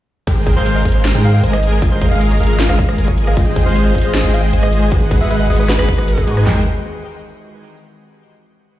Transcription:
0.27 808-style bass G#1, analog synth pad D#3 G#3 C4 G4, supersaw synth G#3 G#4 A#4 C5 G5, synth arpeggio sound G4, kick, closed hi-hat
0.47 synth arpeggio sound G#4, kick, closed hi-hat
0.56 808-style bass G#1, supersaw synth G#3 G#4 A#4 C5 F5, alto saxophone C5
0.66 synth arpeggio sound C5, closed hi-hat
0.76 synth arpeggio sound D#5
0.85 808-style bass G#1, supersaw synth G#3 G#4 A#4 C5 F5, kick, closed hi-hat
0.89 closed hi-hat
0.92 synth arpeggio sound C5, closed hi-hat
1.05 synth arpeggio sound G4, snare, closed hi-hat
1.14 808-style bass G#2, supersaw synth G#3 G#4 A#4 C5 G5
1.24 synth arpeggio sound G#4, alto saxophone F5, closed hi-hat
1.34 alto saxophone F5
1.43 808-style bass G#1, supersaw synth G#3 G#4 A#4 D#5 G#5, synth arpeggio sound C5, closed hi-hat
1.53 alto saxophone D#5, synth arpeggio sound D#5, cross-stick
1.63 analog synth pad C#3 A#3 F4, closed hi-hat
1.73 synth arpeggio sound A#4
1.82 808-style bass G#1, supersaw synth G#3 G#4 A#4 D#5 F5, synth arpeggio sound F4, kick, closed hi-hat
1.92 alto saxophone C5
2.01 synth arpeggio sound G#4, alto saxophone C5, kick, closed hi-hat
2.11 808-style bass G#1, supersaw synth G#3 G#4 A#4 D#5 F5, alto saxophone F5
2.21 synth arpeggio sound A#4, closed hi-hat
2.31 synth arpeggio sound C#5
2.40 808-style bass G#1, supersaw synth G#3 G#4 A#4 D#5 F5, closed hi-hat
2.43 closed hi-hat
2.47 synth arpeggio sound A#4, closed hi-hat
2.59 synth arpeggio sound F4, snare, closed hi-hat
2.69 808-style bass G#1, supersaw synth G#3 G#4 A#4 D#5 F5, alto saxophone F5, cross-stick
2.79 synth arpeggio sound G#4, kick, closed hi-hat
2.89 cross-stick
2.98 808-style bass G#1, supersaw synth G#3 G#4 A#4 D#5 G#5, synth arpeggio sound A#4, closed hi-hat
3.08 synth arpeggio sound C#5, kick
3.18 closed hi-hat
3.27 synth arpeggio sound A#4, alto saxophone F5, cross-stick
3.35 808-style bass G#1, analog synth pad D#3 C4, tine electric piano G#3 F4 G4, supersaw synth G#3 G#4 C5 D#5 G5, synth arpeggio sound F4, alto saxophone F5, kick, closed hi-hat
3.39 tine electric piano D#5
3.56 synth arpeggio sound G#4, kick, closed hi-hat
3.66 808-style bass G#1, supersaw synth G#3 G#4 C5 D#5 F5, alto saxophone C5
3.76 synth arpeggio sound C5, closed hi-hat
3.85 synth arpeggio sound D#5
3.95 supersaw synth G#3 G#4 C5 D#5 F5, kick, closed hi-hat
3.98 closed hi-hat
4.02 tine electric piano G#3 F4, synth arpeggio sound C5, closed hi-hat
4.07 tine electric piano D#5
4.14 synth arpeggio sound F4, snare, closed hi-hat
4.24 808-style bass G#1, supersaw synth G#3 G#4 C5 D#5 G5
4.34 synth arpeggio sound G#4, alto saxophone F5, closed hi-hat
4.43 alto saxophone F5
4.53 808-style bass G#1, supersaw synth G#3 G#4 C5 D#5 G#5, synth arpeggio sound C5, closed hi-hat
4.63 synth arpeggio sound D#5, alto saxophone D#5, cross-stick
4.73 closed hi-hat
4.82 synth arpeggio sound C5
4.90 analog synth pad E3 D#4 F#4, tine electric piano G#3 D#4 F#4 B4, supersaw synth G#3 G#4 B4 D#5 F#5, synth arpeggio sound F#4, kick, closed hi-hat
5.11 synth arpeggio sound G#4, kick, closed hi-hat
5.21 808-style bass G#1, supersaw synth G#3 G#4 B4 D#5 F#5, alto saxophone E5
5.30 synth arpeggio sound B4, alto saxophone E5, closed hi-hat
5.40 synth arpeggio sound D#5
5.50 808-style bass G#1, supersaw synth G#3 G#4 B4 D#5 F#5, alto saxophone D#5, closed hi-hat
5.53 closed hi-hat
5.56 tine electric piano G#3 D#4 F#4, synth arpeggio sound B4, alto saxophone D#5, closed hi-hat
5.62 tine electric piano B4
5.69 synth arpeggio sound F#4, alto saxophone B4, snare, closed hi-hat
5.78 808-style bass G#1, supersaw synth G#3 G#4 B4 D#5 F#5, alto saxophone B4, cross-stick
5.88 synth arpeggio sound G#4, kick, closed hi-hat
5.98 cross-stick
6.08 synth arpeggio sound B4, closed hi-hat
6.17 808-style bass G#1, supersaw synth G#3 G#4 B4 D#5 F#5, synth arpeggio sound D#5, kick
6.26 808-style bass G#2, tine electric piano G#3 D#4 F#4 B4, supersaw synth G#3 G#4 B4 D#5 G#5, closed hi-hat
6.37 synth arpeggio sound B4, cross-stick
6.43 808-style bass G#1, analog synth pad D#3 G#3 C4 G4, tine electric piano G#3 D#4, supersaw synth G#3 G#4 A#4 C5 G5, synth arpeggio sound G4, snare, clap, floor tom
6.48 tine electric piano G4 C5

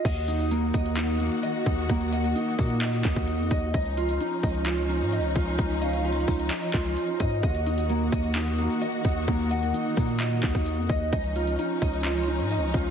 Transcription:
0.05 808-style bass D#2, string section D#3 A#3 F#4, clean electric guitar D#5, kick, closed hi-hat, crash
0.16 closed hi-hat
0.28 clean electric guitar D#4, closed hi-hat
0.40 closed hi-hat
0.51 clean electric guitar A#3, closed hi-hat
0.74 808-style bass D#2, clean electric guitar D#5, kick, closed hi-hat
0.85 closed hi-hat
0.97 clean electric guitar D#4, clap, closed hi-hat
1.09 closed hi-hat
1.20 clean electric guitar A#3, closed hi-hat
1.32 closed hi-hat
1.43 clean electric guitar D#5, closed hi-hat
1.66 808-style bass D#2, clean electric guitar D#4, kick, closed hi-hat
1.89 808-style bass D#2, clean electric guitar A#3, kick, closed hi-hat
2.01 closed hi-hat
2.12 clean electric guitar D#5, soft synth lead F#5, closed hi-hat
2.24 closed hi-hat
2.35 clean electric guitar D#4, closed hi-hat
2.59 808-style bass A#2, clean electric guitar A#3, kick, open hi-hat
2.70 closed hi-hat
2.82 clean electric guitar D#5, clap, closed hi-hat
2.93 closed hi-hat
3.05 808-style bass D#2, clean electric guitar D#4, kick, clap, closed hi-hat
3.16 808-style bass D#2, kick, closed hi-hat
3.28 closed hi-hat
3.39 808-style bass F2
3.51 808-style bass D#2, clean electric guitar D#5, soft synth lead D#5, kick, closed hi-hat
3.74 808-style bass C#2, string section F3 C#4 D#4, clean electric guitar D#5, kick, closed hi-hat
3.85 closed hi-hat
3.97 clean electric guitar F4, closed hi-hat
4.09 closed hi-hat
4.21 clean electric guitar D#4, closed hi-hat
4.43 808-style bass C#2, clean electric guitar D#5, kick, closed hi-hat
4.55 closed hi-hat
4.66 clean electric guitar F4, clap, closed hi-hat
4.78 closed hi-hat
4.89 clean electric guitar D#4, closed hi-hat
5.01 808-style bass G#2, closed hi-hat
5.12 clean electric guitar D#5, closed hi-hat
5.18 808-style bass C#2
5.35 808-style bass C#2, clean electric guitar F4, kick, closed hi-hat
5.59 808-style bass C#2, clean electric guitar D#4, kick, closed hi-hat
5.70 closed hi-hat
5.82 clean electric guitar D#5, soft synth lead F5, closed hi-hat
5.93 closed hi-hat
6.05 clean electric guitar F4, closed hi-hat
6.12 closed hi-hat
6.20 closed hi-hat
6.28 808-style bass C#2, clean electric guitar D#4, kick, open hi-hat
6.39 closed hi-hat
6.51 clean electric guitar D#5, clap, closed hi-hat
6.62 closed hi-hat
6.74 808-style bass C#2, clean electric guitar F4, kick, clap, closed hi-hat
6.85 closed hi-hat
6.97 closed hi-hat
7.20 808-style bass G#2, clean electric guitar D#5, kick, closed hi-hat
7.43 808-style bass D#2, string section D#3 A#3 F#4, clean electric guitar D#5, kick, closed hi-hat
7.55 closed hi-hat
7.66 clean electric guitar D#4, closed hi-hat
7.78 closed hi-hat
7.90 clean electric guitar A#3, closed hi-hat
8.12 808-style bass D#2, clean electric guitar D#5, kick, closed hi-hat
8.24 closed hi-hat
8.36 clean electric guitar D#4, clap, closed hi-hat
8.47 closed hi-hat
8.58 clean electric guitar A#3, closed hi-hat
8.70 closed hi-hat
8.81 clean electric guitar D#5, closed hi-hat
9.04 808-style bass D#2, clean electric guitar D#4, kick, closed hi-hat
9.28 808-style bass D#2, clean electric guitar A#3, kick, closed hi-hat
9.39 closed hi-hat
9.51 clean electric guitar D#5, soft synth lead F#5, closed hi-hat
9.63 closed hi-hat
9.74 clean electric guitar D#4, closed hi-hat
9.97 808-style bass A#2, clean electric guitar A#3, kick, open hi-hat
10.09 closed hi-hat
10.20 clean electric guitar D#5, clap, closed hi-hat
10.32 closed hi-hat
10.43 808-style bass D#2, clean electric guitar D#4, kick, clap, closed hi-hat
10.55 808-style bass D#2, kick, closed hi-hat
10.66 closed hi-hat
10.78 808-style bass F2
10.89 808-style bass D#2, clean electric guitar D#5, soft synth lead D#5, kick, closed hi-hat
11.13 808-style bass C#2, string section F3 C#4 D#4, clean electric guitar D#5, kick, closed hi-hat
11.24 closed hi-hat
11.36 clean electric guitar F4, closed hi-hat
11.47 closed hi-hat
11.59 clean electric guitar D#4, closed hi-hat
11.82 808-style bass C#2, clean electric guitar D#5, kick, closed hi-hat
11.93 closed hi-hat
12.05 clean electric guitar F4, clap, closed hi-hat
12.17 closed hi-hat
12.28 clean electric guitar D#4, closed hi-hat
12.40 808-style bass G#2, closed hi-hat
12.51 clean electric guitar D#5, closed hi-hat
12.57 808-style bass C#2
12.74 808-style bass C#2, clean electric guitar F4, kick, closed hi-hat

